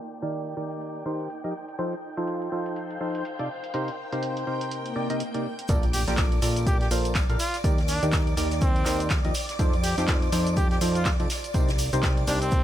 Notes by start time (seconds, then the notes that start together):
Already playing: A#3 D#4 F4 D5 G5 A5 G6
0.22 D#3 D#4 G4 A#4 D5, closed hi-hat
0.32 closed hi-hat
0.47 closed hi-hat
0.57 D#3 D#4 G4 A#4 D5
0.71 closed hi-hat
0.81 closed hi-hat
0.95 closed hi-hat
1.06 D#3 D#4 G4 A#4 C5
1.20 closed hi-hat
1.30 closed hi-hat
1.44 F3 D#4 G4 A#4 D#5, closed hi-hat
1.69 A4, closed hi-hat
1.79 F3 D#4 F4 A4 C5, closed hi-hat
1.93 closed hi-hat
2.17 F3 D#4 F4 A4 C5, closed hi-hat
2.27 C5, closed hi-hat
2.35 F5
2.42 closed hi-hat
2.52 F3 D#4 F4 A4 C5
2.66 closed hi-hat
2.76 closed hi-hat
2.91 closed hi-hat
3.01 F3 D#4 F4 A4 C5
3.15 closed hi-hat
3.25 closed hi-hat
3.39 C3 D#4 F4 A4 D5, closed hi-hat
3.61 A#4, closed hi-hat
3.74 C3 D#4 G4 A#4 C5, closed hi-hat
3.88 closed hi-hat
4.12 C3 D#4 G4 A#4 C5, closed hi-hat
4.23 closed hi-hat
4.37 closed hi-hat
4.47 C3 D#4 G4 A#4 C5 G5
4.61 closed hi-hat
4.71 closed hi-hat, swell
4.86 closed hi-hat
4.96 C3 D#4 G4 A#4 D5
5.10 C3 D#4 G4 A#4 D#5, closed hi-hat
5.20 closed hi-hat
5.34 C3 D#4 G4 A#4 D5, closed hi-hat
5.59 closed hi-hat
5.68 A#1 A#3 F4 A4 A#4 D5 D6, kick, closed hi-hat, tambourine, impact, shaker
5.83 closed hi-hat, tambourine
5.93 G4, open hi-hat, tambourine, shaker
6.07 A#1 A#3 F4 G4 A4 A#4 D5, snare, closed hi-hat, tambourine, shaker
6.17 kick, snare, clap, closed hi-hat, tambourine, shaker
6.32 closed hi-hat, tambourine
6.42 A#1 A#3 F4 A4 A#4 D5, open hi-hat, tambourine, shaker
6.56 closed hi-hat, tambourine, shaker
6.67 G4, kick, closed hi-hat, tambourine, shaker
6.81 G4, snare, closed hi-hat, tambourine
6.91 A#1 A#3 F4 A4 A#4 C5, open hi-hat, tambourine, shaker
7.05 closed hi-hat, tambourine, shaker
7.15 kick, snare, clap, closed hi-hat, tambourine, shaker
7.29 A#1 F4 A4 A#4 F5, closed hi-hat, tambourine
7.39 F4, open hi-hat, tambourine, shaker
7.54 snare, closed hi-hat, tambourine, shaker
7.64 D#2 D#3 D#4 G4 A#4 D5, kick, closed hi-hat, tambourine, shaker
7.78 snare, closed hi-hat, tambourine
7.88 D4, snare, open hi-hat, tambourine, shaker
8.02 D#2 D#3 D#4 G4 A#4 D5, closed hi-hat, tambourine, shaker
8.12 kick, snare, clap, closed hi-hat, tambourine, shaker
8.27 closed hi-hat, tambourine
8.37 D#2 D#3 D#4 G4 A#4 D5, open hi-hat, tambourine, shaker
8.51 snare, closed hi-hat, tambourine, shaker
8.61 C4, kick, closed hi-hat, tambourine, shaker
8.76 closed hi-hat, tambourine
8.85 D#2 D#3 D#4 G4 A#4 C5, clap, open hi-hat, tambourine, shaker
9.00 closed hi-hat, tambourine, shaker
9.10 kick, snare, clap, closed hi-hat, tambourine, shaker
9.24 D#2 F3 D#4 G4 A#4 D#5, closed hi-hat, tambourine
9.34 open hi-hat, tambourine, shaker
9.49 snare, closed hi-hat, tambourine, shaker
9.59 F2 F3 D#4 F4 A4 C5, kick, closed hi-hat, tambourine, shaker
9.73 closed hi-hat, tambourine
9.83 G4, open hi-hat, tambourine, shaker
9.97 F2 F3 D#4 F4 G4 A4 C5, snare, closed hi-hat, tambourine, shaker
10.08 kick, snare, clap, closed hi-hat, tambourine, shaker
10.22 closed hi-hat, tambourine
10.32 F2 F3 D#4 F4 A4 C5, open hi-hat, tambourine, shaker
10.46 closed hi-hat, tambourine, shaker
10.56 G4, kick, closed hi-hat, tambourine, shaker
10.71 G4, snare, closed hi-hat, tambourine
10.81 F2 F3 D#4 F4 A4 C5, open hi-hat, tambourine, shaker
10.95 F4, closed hi-hat, tambourine, shaker
11.05 kick, snare, clap, closed hi-hat, tambourine, shaker
11.20 F2 C3 D#4 F4 A4 D5, closed hi-hat, tambourine
11.30 snare, open hi-hat, tambourine, shaker
11.44 closed hi-hat, tambourine, shaker
11.54 C2 C3 D#4 G4 A#4 C5, kick, closed hi-hat, tambourine, shaker
11.68 snare, closed hi-hat, tambourine, shaker
11.78 open hi-hat, tambourine, shaker
11.92 C2 C3 D#4 G4 A#4 C5, closed hi-hat, tambourine, shaker
12.03 kick, snare, clap, closed hi-hat, tambourine, shaker
12.17 closed hi-hat, tambourine
12.27 C2 C3 D4 D#4 G4 A#4 C5, open hi-hat, tambourine, shaker
12.41 C4, closed hi-hat, tambourine, shaker
12.51 kick, closed hi-hat, tambourine, shaker